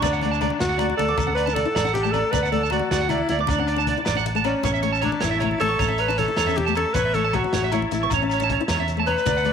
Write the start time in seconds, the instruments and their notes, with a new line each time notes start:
Already playing: alto saxophone D4
0.02 fingered electric bass D2, nylon-string guitar B3, clean electric guitar D5, tonewheel organ D5 F#5 A5, kick, crash, muted conga, low conga, low agogo, shekere
0.13 clean electric guitar F#5, shekere
0.22 nylon-string guitar A3, clean electric guitar D5, closed hi-hat, high conga
0.31 clean electric guitar A5, low conga, shekere
0.41 nylon-string guitar A3, clean electric guitar D5, closed hi-hat, low conga, low agogo
0.50 muted conga, high conga
0.59 fingered electric bass D2, nylon-string guitar B3, alto saxophone F#4, muted clean electric guitar stroke, snare, closed hi-hat, shekere
0.69 clean electric guitar F#5
0.78 nylon-string guitar A3, clean electric guitar D5, closed hi-hat, low conga, low agogo
0.90 high conga
0.97 fingered electric bass D2, nylon-string guitar A3, alto saxophone A4, clean electric guitar D5, closed hi-hat, muted conga
1.08 nylon-string guitar B3, clean electric guitar D6
1.17 fingered electric bass D2, muted clean electric guitar stroke, kick, closed hi-hat, high conga, low conga, low agogo, shekere
1.27 nylon-string guitar C#4, clean electric guitar F#5
1.35 alto saxophone B4, clean electric guitar D5, closed hi-hat, low agogo
1.46 nylon-string guitar D4, clean electric guitar A5, muted conga, shekere
1.54 alto saxophone A4, clean electric guitar D5, closed hi-hat, high conga, low conga
1.65 nylon-string guitar E4
1.75 fingered electric bass A1, clean electric guitar D5, snare, closed hi-hat, low agogo, shekere
1.84 nylon-string guitar D4, clean electric guitar F#5, high conga, shekere
1.93 alto saxophone G4, closed hi-hat, muted conga, low conga
2.03 nylon-string guitar A3, clean electric guitar A5, shekere
2.12 nylon-string guitar C#4, alto saxophone A4, clean electric guitar D5, closed hi-hat, high conga, low agogo
2.31 fingered electric bass D2, nylon-string guitar B3, alto saxophone B4, clean electric guitar D5, kick, closed hi-hat, muted conga, low conga, low agogo, shekere
2.43 clean electric guitar F#5, shekere
2.52 nylon-string guitar A3, alto saxophone A4, clean electric guitar D5, closed hi-hat, high conga
2.62 clean electric guitar A5, low conga, shekere
2.70 nylon-string guitar A3, alto saxophone F#4, clean electric guitar D5, closed hi-hat, low conga, low agogo
2.79 muted conga, high conga
2.91 fingered electric bass D2, nylon-string guitar B3, alto saxophone F#4, clean electric guitar D5, snare, closed hi-hat, shekere
3.01 clean electric guitar F#5
3.09 nylon-string guitar A3, alto saxophone E4, clean electric guitar D5, closed hi-hat, low conga, low agogo
3.18 high conga
3.29 fingered electric bass D2, nylon-string guitar A3, alto saxophone E4, clean electric guitar D5, closed hi-hat, muted conga
3.39 nylon-string guitar B3, clean electric guitar D6
3.47 fingered electric bass D2, alto saxophone D4, clean electric guitar D5, kick, closed hi-hat, high conga, low conga, low agogo, shekere
3.58 nylon-string guitar C#4, clean electric guitar F#5
3.67 clean electric guitar D5, closed hi-hat, low agogo
3.76 nylon-string guitar D4, clean electric guitar A5, muted conga, shekere
3.87 clean electric guitar D5, closed hi-hat, high conga, low conga
3.98 nylon-string guitar E4
4.05 fingered electric bass A1, clean electric guitar D5, snare, closed hi-hat, low agogo, shekere
4.15 nylon-string guitar D4, clean electric guitar F#5, high conga, shekere
4.26 closed hi-hat, muted conga, low conga
4.35 nylon-string guitar A3, clean electric guitar A5, shekere
4.44 nylon-string guitar C#4, alto saxophone C#4, clean electric guitar D5, closed hi-hat, high conga, low agogo
4.63 fingered electric bass A1, nylon-string guitar B3, tonewheel organ C#5 E5, clean electric guitar C#5, kick, closed hi-hat, muted conga, low conga, low agogo, shekere
4.74 clean electric guitar E5, shekere
4.82 nylon-string guitar A3, clean electric guitar C#5, closed hi-hat, high conga
4.93 clean electric guitar A5, low conga, shekere
5.01 nylon-string guitar A3, alto saxophone D4, clean electric guitar C#5, closed hi-hat, low conga, low agogo
5.12 muted conga, high conga
5.21 fingered electric bass A1, nylon-string guitar B3, alto saxophone E4, clean electric guitar C#5, snare, closed hi-hat, shekere
5.31 clean electric guitar E5
5.40 nylon-string guitar A3, clean electric guitar C#5, closed hi-hat, low conga, low agogo
5.51 high conga
5.60 fingered electric bass A1, nylon-string guitar A3, alto saxophone A4, clean electric guitar C#5, closed hi-hat, muted conga
5.69 nylon-string guitar B3, clean electric guitar C#6
5.79 fingered electric bass A1, clean electric guitar C#5, kick, closed hi-hat, high conga, low conga, low agogo, shekere
5.88 nylon-string guitar C#4, clean electric guitar E5
5.98 alto saxophone B4, clean electric guitar C#5, closed hi-hat, low agogo
6.08 nylon-string guitar D4, clean electric guitar A5, muted conga, shekere
6.18 alto saxophone A4, clean electric guitar C#5, closed hi-hat, high conga, low conga
6.28 nylon-string guitar E4
6.37 fingered electric bass E2, clean electric guitar C#5, snare, closed hi-hat, low agogo, shekere
6.47 nylon-string guitar C#4, clean electric guitar E5, high conga, shekere
6.56 alto saxophone G4, closed hi-hat, muted conga, low conga
6.66 nylon-string guitar A3, clean electric guitar A5, shekere
6.75 nylon-string guitar C#4, alto saxophone A4, clean electric guitar C#5, closed hi-hat, high conga, low agogo
6.94 fingered electric bass A1, nylon-string guitar B3, alto saxophone B4, clean electric guitar C#5, kick, closed hi-hat, muted conga, low conga, low agogo, shekere
7.05 clean electric guitar E5
7.14 nylon-string guitar A3, alto saxophone A4, clean electric guitar C#5, closed hi-hat, high conga
7.25 clean electric guitar A5
7.33 nylon-string guitar A3, alto saxophone F#4, clean electric guitar C#5, kick, closed hi-hat, low conga, low agogo
7.44 muted conga, high conga
7.53 fingered electric bass A1, nylon-string guitar B3, clean electric guitar C#5, snare, closed hi-hat, shekere
7.64 clean electric guitar E5
7.72 nylon-string guitar A3, alto saxophone E4, clean electric guitar C#5, closed hi-hat, low conga, low agogo, shekere
7.82 high conga, low conga
7.91 fingered electric bass A1, nylon-string guitar A3, alto saxophone E4, closed hi-hat, muted conga, shekere
8.03 nylon-string guitar B3, clean electric guitar C#6
8.10 fingered electric bass A1, clean electric guitar C#5, kick, closed hi-hat, high conga, low conga, low agogo, shekere
8.14 alto saxophone C#4
8.22 nylon-string guitar C#4, muted clean electric guitar stroke
8.30 clean electric guitar C#5, closed hi-hat, low agogo, shekere
8.40 nylon-string guitar D4, clean electric guitar A5, muted conga, low conga, shekere
8.49 clean electric guitar C#5, kick, closed hi-hat, low conga
8.59 nylon-string guitar E4, low conga
8.68 fingered electric bass E2, clean electric guitar C#5, snare, closed hi-hat, high conga, low agogo, shekere
8.80 nylon-string guitar C#4, clean electric guitar E5
8.88 closed hi-hat, low conga, shekere
8.97 nylon-string guitar A3, clean electric guitar A5
9.06 nylon-string guitar C#4, alto saxophone B4, clean electric guitar C#5, closed hi-hat, low conga, low agogo
9.18 shekere
9.26 fingered electric bass D2, nylon-string guitar B3, clean electric guitar D5, tonewheel organ D5 F#5, kick, closed hi-hat, muted conga, low conga, low agogo, shekere
9.37 clean electric guitar F#5, shekere
9.45 nylon-string guitar A3, clean electric guitar D5, closed hi-hat, high conga